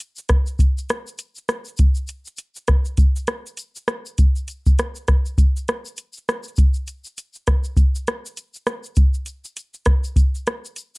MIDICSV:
0, 0, Header, 1, 2, 480
1, 0, Start_track
1, 0, Tempo, 598205
1, 1437, Time_signature, 4, 2, 24, 8
1, 8811, End_track
2, 0, Start_track
2, 0, Title_t, "Drums"
2, 2, Note_on_c, 9, 42, 71
2, 2, Note_on_c, 9, 82, 71
2, 82, Note_off_c, 9, 42, 0
2, 82, Note_off_c, 9, 82, 0
2, 127, Note_on_c, 9, 82, 42
2, 145, Note_off_c, 9, 82, 0
2, 145, Note_on_c, 9, 82, 48
2, 225, Note_off_c, 9, 82, 0
2, 232, Note_on_c, 9, 42, 57
2, 232, Note_on_c, 9, 82, 55
2, 236, Note_on_c, 9, 37, 75
2, 241, Note_on_c, 9, 36, 80
2, 312, Note_off_c, 9, 42, 0
2, 312, Note_off_c, 9, 82, 0
2, 316, Note_off_c, 9, 37, 0
2, 321, Note_off_c, 9, 36, 0
2, 371, Note_on_c, 9, 82, 39
2, 378, Note_off_c, 9, 82, 0
2, 378, Note_on_c, 9, 82, 42
2, 458, Note_off_c, 9, 82, 0
2, 474, Note_on_c, 9, 36, 85
2, 475, Note_on_c, 9, 82, 56
2, 482, Note_off_c, 9, 82, 0
2, 482, Note_on_c, 9, 42, 68
2, 482, Note_on_c, 9, 82, 59
2, 555, Note_off_c, 9, 36, 0
2, 562, Note_off_c, 9, 42, 0
2, 562, Note_off_c, 9, 82, 0
2, 624, Note_on_c, 9, 82, 39
2, 626, Note_off_c, 9, 82, 0
2, 626, Note_on_c, 9, 82, 55
2, 707, Note_off_c, 9, 82, 0
2, 718, Note_on_c, 9, 42, 51
2, 718, Note_on_c, 9, 82, 51
2, 724, Note_on_c, 9, 37, 80
2, 799, Note_off_c, 9, 42, 0
2, 799, Note_off_c, 9, 82, 0
2, 804, Note_off_c, 9, 37, 0
2, 859, Note_on_c, 9, 82, 43
2, 868, Note_off_c, 9, 82, 0
2, 868, Note_on_c, 9, 82, 54
2, 948, Note_off_c, 9, 82, 0
2, 950, Note_on_c, 9, 82, 64
2, 953, Note_off_c, 9, 82, 0
2, 953, Note_on_c, 9, 42, 67
2, 953, Note_on_c, 9, 82, 60
2, 1033, Note_off_c, 9, 42, 0
2, 1033, Note_off_c, 9, 82, 0
2, 1085, Note_on_c, 9, 82, 41
2, 1103, Note_off_c, 9, 82, 0
2, 1103, Note_on_c, 9, 82, 42
2, 1183, Note_off_c, 9, 82, 0
2, 1195, Note_on_c, 9, 37, 79
2, 1196, Note_on_c, 9, 42, 49
2, 1196, Note_on_c, 9, 82, 51
2, 1275, Note_off_c, 9, 37, 0
2, 1276, Note_off_c, 9, 42, 0
2, 1276, Note_off_c, 9, 82, 0
2, 1323, Note_on_c, 9, 82, 50
2, 1345, Note_off_c, 9, 82, 0
2, 1345, Note_on_c, 9, 82, 42
2, 1422, Note_off_c, 9, 82, 0
2, 1422, Note_on_c, 9, 82, 52
2, 1435, Note_off_c, 9, 82, 0
2, 1435, Note_on_c, 9, 42, 66
2, 1435, Note_on_c, 9, 82, 69
2, 1438, Note_on_c, 9, 36, 94
2, 1515, Note_off_c, 9, 42, 0
2, 1515, Note_off_c, 9, 82, 0
2, 1519, Note_off_c, 9, 36, 0
2, 1563, Note_on_c, 9, 82, 52
2, 1576, Note_off_c, 9, 82, 0
2, 1576, Note_on_c, 9, 82, 46
2, 1656, Note_off_c, 9, 82, 0
2, 1663, Note_on_c, 9, 82, 43
2, 1675, Note_off_c, 9, 82, 0
2, 1675, Note_on_c, 9, 42, 54
2, 1675, Note_on_c, 9, 82, 51
2, 1756, Note_off_c, 9, 42, 0
2, 1756, Note_off_c, 9, 82, 0
2, 1806, Note_on_c, 9, 82, 44
2, 1821, Note_off_c, 9, 82, 0
2, 1821, Note_on_c, 9, 82, 52
2, 1902, Note_off_c, 9, 82, 0
2, 1902, Note_on_c, 9, 82, 49
2, 1913, Note_off_c, 9, 82, 0
2, 1913, Note_on_c, 9, 42, 70
2, 1913, Note_on_c, 9, 82, 71
2, 1993, Note_off_c, 9, 42, 0
2, 1993, Note_off_c, 9, 82, 0
2, 2045, Note_on_c, 9, 82, 37
2, 2056, Note_off_c, 9, 82, 0
2, 2056, Note_on_c, 9, 82, 46
2, 2136, Note_off_c, 9, 82, 0
2, 2147, Note_on_c, 9, 42, 54
2, 2147, Note_on_c, 9, 82, 53
2, 2151, Note_on_c, 9, 37, 78
2, 2159, Note_on_c, 9, 36, 81
2, 2228, Note_off_c, 9, 42, 0
2, 2228, Note_off_c, 9, 82, 0
2, 2232, Note_off_c, 9, 37, 0
2, 2239, Note_off_c, 9, 36, 0
2, 2286, Note_on_c, 9, 82, 41
2, 2289, Note_off_c, 9, 82, 0
2, 2289, Note_on_c, 9, 82, 40
2, 2369, Note_off_c, 9, 82, 0
2, 2386, Note_on_c, 9, 42, 62
2, 2386, Note_on_c, 9, 82, 59
2, 2391, Note_on_c, 9, 36, 91
2, 2396, Note_off_c, 9, 82, 0
2, 2396, Note_on_c, 9, 82, 54
2, 2466, Note_off_c, 9, 42, 0
2, 2471, Note_off_c, 9, 36, 0
2, 2477, Note_off_c, 9, 82, 0
2, 2536, Note_on_c, 9, 82, 57
2, 2549, Note_off_c, 9, 82, 0
2, 2549, Note_on_c, 9, 82, 39
2, 2626, Note_off_c, 9, 82, 0
2, 2626, Note_on_c, 9, 42, 54
2, 2626, Note_on_c, 9, 82, 50
2, 2632, Note_on_c, 9, 37, 82
2, 2706, Note_off_c, 9, 42, 0
2, 2706, Note_off_c, 9, 82, 0
2, 2712, Note_off_c, 9, 37, 0
2, 2779, Note_on_c, 9, 82, 53
2, 2786, Note_off_c, 9, 82, 0
2, 2786, Note_on_c, 9, 82, 45
2, 2866, Note_off_c, 9, 82, 0
2, 2866, Note_on_c, 9, 42, 63
2, 2866, Note_on_c, 9, 82, 63
2, 2877, Note_off_c, 9, 82, 0
2, 2877, Note_on_c, 9, 82, 68
2, 2946, Note_off_c, 9, 42, 0
2, 2957, Note_off_c, 9, 82, 0
2, 3011, Note_on_c, 9, 82, 46
2, 3019, Note_off_c, 9, 82, 0
2, 3019, Note_on_c, 9, 82, 43
2, 3100, Note_off_c, 9, 82, 0
2, 3112, Note_on_c, 9, 37, 89
2, 3113, Note_on_c, 9, 42, 52
2, 3113, Note_on_c, 9, 82, 51
2, 3192, Note_off_c, 9, 37, 0
2, 3193, Note_off_c, 9, 42, 0
2, 3193, Note_off_c, 9, 82, 0
2, 3257, Note_on_c, 9, 82, 51
2, 3260, Note_off_c, 9, 82, 0
2, 3260, Note_on_c, 9, 82, 45
2, 3340, Note_off_c, 9, 82, 0
2, 3354, Note_on_c, 9, 42, 67
2, 3354, Note_on_c, 9, 82, 74
2, 3359, Note_off_c, 9, 82, 0
2, 3359, Note_on_c, 9, 82, 55
2, 3360, Note_on_c, 9, 36, 98
2, 3434, Note_off_c, 9, 42, 0
2, 3439, Note_off_c, 9, 82, 0
2, 3440, Note_off_c, 9, 36, 0
2, 3495, Note_on_c, 9, 82, 45
2, 3502, Note_off_c, 9, 82, 0
2, 3502, Note_on_c, 9, 82, 46
2, 3582, Note_off_c, 9, 82, 0
2, 3593, Note_on_c, 9, 42, 54
2, 3593, Note_on_c, 9, 82, 53
2, 3605, Note_off_c, 9, 82, 0
2, 3605, Note_on_c, 9, 82, 46
2, 3673, Note_off_c, 9, 42, 0
2, 3685, Note_off_c, 9, 82, 0
2, 3741, Note_on_c, 9, 82, 54
2, 3743, Note_off_c, 9, 82, 0
2, 3743, Note_on_c, 9, 36, 82
2, 3743, Note_on_c, 9, 82, 46
2, 3823, Note_off_c, 9, 82, 0
2, 3824, Note_off_c, 9, 36, 0
2, 3841, Note_on_c, 9, 42, 70
2, 3841, Note_on_c, 9, 82, 78
2, 3847, Note_on_c, 9, 37, 84
2, 3921, Note_off_c, 9, 42, 0
2, 3921, Note_off_c, 9, 82, 0
2, 3927, Note_off_c, 9, 37, 0
2, 3973, Note_on_c, 9, 82, 39
2, 3979, Note_off_c, 9, 82, 0
2, 3979, Note_on_c, 9, 82, 45
2, 4059, Note_off_c, 9, 82, 0
2, 4074, Note_on_c, 9, 42, 55
2, 4074, Note_on_c, 9, 82, 56
2, 4078, Note_on_c, 9, 37, 70
2, 4081, Note_on_c, 9, 36, 84
2, 4155, Note_off_c, 9, 42, 0
2, 4155, Note_off_c, 9, 82, 0
2, 4159, Note_off_c, 9, 37, 0
2, 4162, Note_off_c, 9, 36, 0
2, 4218, Note_on_c, 9, 82, 43
2, 4220, Note_off_c, 9, 82, 0
2, 4220, Note_on_c, 9, 82, 42
2, 4300, Note_off_c, 9, 82, 0
2, 4316, Note_on_c, 9, 36, 87
2, 4320, Note_on_c, 9, 42, 63
2, 4320, Note_on_c, 9, 82, 61
2, 4396, Note_off_c, 9, 36, 0
2, 4400, Note_off_c, 9, 42, 0
2, 4400, Note_off_c, 9, 82, 0
2, 4466, Note_on_c, 9, 82, 51
2, 4469, Note_off_c, 9, 82, 0
2, 4469, Note_on_c, 9, 82, 41
2, 4549, Note_off_c, 9, 82, 0
2, 4559, Note_on_c, 9, 42, 53
2, 4559, Note_on_c, 9, 82, 50
2, 4565, Note_on_c, 9, 37, 78
2, 4639, Note_off_c, 9, 42, 0
2, 4639, Note_off_c, 9, 82, 0
2, 4645, Note_off_c, 9, 37, 0
2, 4697, Note_on_c, 9, 82, 46
2, 4711, Note_off_c, 9, 82, 0
2, 4711, Note_on_c, 9, 82, 55
2, 4789, Note_off_c, 9, 82, 0
2, 4789, Note_on_c, 9, 82, 62
2, 4798, Note_off_c, 9, 82, 0
2, 4798, Note_on_c, 9, 42, 70
2, 4798, Note_on_c, 9, 82, 58
2, 4878, Note_off_c, 9, 42, 0
2, 4878, Note_off_c, 9, 82, 0
2, 4920, Note_on_c, 9, 82, 43
2, 4953, Note_off_c, 9, 82, 0
2, 4953, Note_on_c, 9, 82, 45
2, 5033, Note_off_c, 9, 82, 0
2, 5046, Note_on_c, 9, 37, 94
2, 5047, Note_on_c, 9, 42, 50
2, 5047, Note_on_c, 9, 82, 53
2, 5126, Note_off_c, 9, 37, 0
2, 5128, Note_off_c, 9, 42, 0
2, 5128, Note_off_c, 9, 82, 0
2, 5163, Note_on_c, 9, 82, 52
2, 5197, Note_off_c, 9, 82, 0
2, 5197, Note_on_c, 9, 82, 40
2, 5267, Note_off_c, 9, 82, 0
2, 5267, Note_on_c, 9, 82, 54
2, 5281, Note_on_c, 9, 36, 103
2, 5284, Note_off_c, 9, 82, 0
2, 5284, Note_on_c, 9, 42, 69
2, 5284, Note_on_c, 9, 82, 72
2, 5361, Note_off_c, 9, 36, 0
2, 5364, Note_off_c, 9, 42, 0
2, 5364, Note_off_c, 9, 82, 0
2, 5406, Note_on_c, 9, 82, 49
2, 5420, Note_off_c, 9, 82, 0
2, 5420, Note_on_c, 9, 82, 44
2, 5500, Note_off_c, 9, 82, 0
2, 5513, Note_on_c, 9, 82, 43
2, 5518, Note_off_c, 9, 82, 0
2, 5518, Note_on_c, 9, 42, 53
2, 5518, Note_on_c, 9, 82, 53
2, 5598, Note_off_c, 9, 42, 0
2, 5598, Note_off_c, 9, 82, 0
2, 5652, Note_on_c, 9, 82, 43
2, 5666, Note_off_c, 9, 82, 0
2, 5666, Note_on_c, 9, 82, 45
2, 5746, Note_off_c, 9, 82, 0
2, 5755, Note_on_c, 9, 82, 51
2, 5761, Note_off_c, 9, 82, 0
2, 5761, Note_on_c, 9, 42, 71
2, 5761, Note_on_c, 9, 82, 75
2, 5841, Note_off_c, 9, 42, 0
2, 5841, Note_off_c, 9, 82, 0
2, 5885, Note_on_c, 9, 82, 38
2, 5900, Note_off_c, 9, 82, 0
2, 5900, Note_on_c, 9, 82, 43
2, 5980, Note_off_c, 9, 82, 0
2, 5995, Note_on_c, 9, 42, 54
2, 5995, Note_on_c, 9, 82, 50
2, 5999, Note_on_c, 9, 37, 77
2, 6000, Note_on_c, 9, 36, 81
2, 6075, Note_off_c, 9, 42, 0
2, 6075, Note_off_c, 9, 82, 0
2, 6079, Note_off_c, 9, 37, 0
2, 6080, Note_off_c, 9, 36, 0
2, 6130, Note_on_c, 9, 82, 44
2, 6138, Note_off_c, 9, 82, 0
2, 6138, Note_on_c, 9, 82, 44
2, 6218, Note_off_c, 9, 82, 0
2, 6232, Note_on_c, 9, 36, 91
2, 6234, Note_on_c, 9, 82, 57
2, 6237, Note_off_c, 9, 82, 0
2, 6237, Note_on_c, 9, 42, 65
2, 6237, Note_on_c, 9, 82, 61
2, 6312, Note_off_c, 9, 36, 0
2, 6317, Note_off_c, 9, 42, 0
2, 6317, Note_off_c, 9, 82, 0
2, 6381, Note_on_c, 9, 82, 43
2, 6384, Note_off_c, 9, 82, 0
2, 6384, Note_on_c, 9, 82, 55
2, 6464, Note_off_c, 9, 82, 0
2, 6479, Note_on_c, 9, 42, 54
2, 6479, Note_on_c, 9, 82, 51
2, 6484, Note_on_c, 9, 37, 80
2, 6559, Note_off_c, 9, 42, 0
2, 6559, Note_off_c, 9, 82, 0
2, 6564, Note_off_c, 9, 37, 0
2, 6624, Note_on_c, 9, 82, 45
2, 6628, Note_off_c, 9, 82, 0
2, 6628, Note_on_c, 9, 82, 58
2, 6708, Note_off_c, 9, 82, 0
2, 6716, Note_on_c, 9, 82, 58
2, 6718, Note_off_c, 9, 82, 0
2, 6718, Note_on_c, 9, 42, 66
2, 6718, Note_on_c, 9, 82, 66
2, 6798, Note_off_c, 9, 42, 0
2, 6798, Note_off_c, 9, 82, 0
2, 6851, Note_on_c, 9, 82, 43
2, 6865, Note_off_c, 9, 82, 0
2, 6865, Note_on_c, 9, 82, 42
2, 6945, Note_off_c, 9, 82, 0
2, 6954, Note_on_c, 9, 37, 84
2, 6956, Note_on_c, 9, 42, 45
2, 6956, Note_on_c, 9, 82, 48
2, 7035, Note_off_c, 9, 37, 0
2, 7036, Note_off_c, 9, 42, 0
2, 7036, Note_off_c, 9, 82, 0
2, 7090, Note_on_c, 9, 82, 49
2, 7106, Note_off_c, 9, 82, 0
2, 7106, Note_on_c, 9, 82, 45
2, 7187, Note_off_c, 9, 82, 0
2, 7188, Note_on_c, 9, 82, 53
2, 7195, Note_off_c, 9, 82, 0
2, 7195, Note_on_c, 9, 42, 65
2, 7195, Note_on_c, 9, 82, 73
2, 7197, Note_on_c, 9, 36, 102
2, 7275, Note_off_c, 9, 42, 0
2, 7275, Note_off_c, 9, 82, 0
2, 7278, Note_off_c, 9, 36, 0
2, 7333, Note_on_c, 9, 82, 44
2, 7337, Note_off_c, 9, 82, 0
2, 7337, Note_on_c, 9, 82, 46
2, 7417, Note_off_c, 9, 82, 0
2, 7430, Note_on_c, 9, 42, 55
2, 7430, Note_on_c, 9, 82, 54
2, 7438, Note_off_c, 9, 82, 0
2, 7438, Note_on_c, 9, 82, 41
2, 7510, Note_off_c, 9, 42, 0
2, 7518, Note_off_c, 9, 82, 0
2, 7579, Note_on_c, 9, 82, 52
2, 7581, Note_off_c, 9, 82, 0
2, 7581, Note_on_c, 9, 82, 43
2, 7661, Note_off_c, 9, 82, 0
2, 7676, Note_on_c, 9, 42, 73
2, 7676, Note_on_c, 9, 82, 70
2, 7691, Note_off_c, 9, 82, 0
2, 7691, Note_on_c, 9, 82, 47
2, 7756, Note_off_c, 9, 42, 0
2, 7771, Note_off_c, 9, 82, 0
2, 7814, Note_on_c, 9, 82, 51
2, 7817, Note_off_c, 9, 82, 0
2, 7817, Note_on_c, 9, 82, 36
2, 7897, Note_off_c, 9, 82, 0
2, 7908, Note_on_c, 9, 42, 55
2, 7908, Note_on_c, 9, 82, 55
2, 7912, Note_on_c, 9, 37, 79
2, 7918, Note_on_c, 9, 36, 84
2, 7988, Note_off_c, 9, 42, 0
2, 7988, Note_off_c, 9, 82, 0
2, 7992, Note_off_c, 9, 37, 0
2, 7998, Note_off_c, 9, 36, 0
2, 8053, Note_on_c, 9, 82, 41
2, 8058, Note_off_c, 9, 82, 0
2, 8058, Note_on_c, 9, 82, 45
2, 8138, Note_off_c, 9, 82, 0
2, 8153, Note_on_c, 9, 36, 81
2, 8157, Note_on_c, 9, 42, 62
2, 8157, Note_on_c, 9, 82, 66
2, 8166, Note_off_c, 9, 82, 0
2, 8166, Note_on_c, 9, 82, 53
2, 8234, Note_off_c, 9, 36, 0
2, 8237, Note_off_c, 9, 42, 0
2, 8246, Note_off_c, 9, 82, 0
2, 8304, Note_on_c, 9, 82, 56
2, 8313, Note_off_c, 9, 82, 0
2, 8313, Note_on_c, 9, 82, 40
2, 8394, Note_off_c, 9, 82, 0
2, 8399, Note_on_c, 9, 42, 57
2, 8399, Note_on_c, 9, 82, 52
2, 8405, Note_on_c, 9, 37, 80
2, 8480, Note_off_c, 9, 42, 0
2, 8480, Note_off_c, 9, 82, 0
2, 8485, Note_off_c, 9, 37, 0
2, 8545, Note_on_c, 9, 82, 47
2, 8549, Note_off_c, 9, 82, 0
2, 8549, Note_on_c, 9, 82, 56
2, 8630, Note_off_c, 9, 82, 0
2, 8635, Note_on_c, 9, 42, 60
2, 8635, Note_on_c, 9, 82, 65
2, 8645, Note_off_c, 9, 82, 0
2, 8645, Note_on_c, 9, 82, 60
2, 8716, Note_off_c, 9, 42, 0
2, 8726, Note_off_c, 9, 82, 0
2, 8786, Note_on_c, 9, 82, 44
2, 8811, Note_off_c, 9, 82, 0
2, 8811, End_track
0, 0, End_of_file